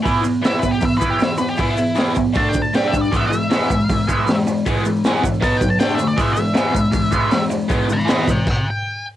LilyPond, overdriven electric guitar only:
\new Staff \with { instrumentName = "Overdriven electric guitar" } { \clef bass \time 4/4 \key e \mixolydian \tempo 4 = 157 <e b e'>8 <e b>8 <e b e'>8 <e b>8 <e b>8 <e b e'>8 <e b>8 <e b>8 | <e b e'>8 <e b>8 <e b e'>8 <e b>8 <d a d'>8 <d a>8 <g d' g'>8 <g d'>8 | <e gis b>8 <e gis>8 <e gis b>8 <e gis>8 <e gis>8 <e gis b>8 <e gis>8 <e gis>8 | <e gis b>8 <e gis>8 <e gis b>8 <e gis>8 <b, fis b>8 <b, fis>8 <d a d'>8 <d a>8 |
<e gis b>8 <e gis>8 <e gis b>8 <e gis>8 <e gis>8 <e gis b>8 <e gis>8 <e gis>8 | <e gis b>8 <e gis>8 <e gis b>8 <e gis>8 r2 | }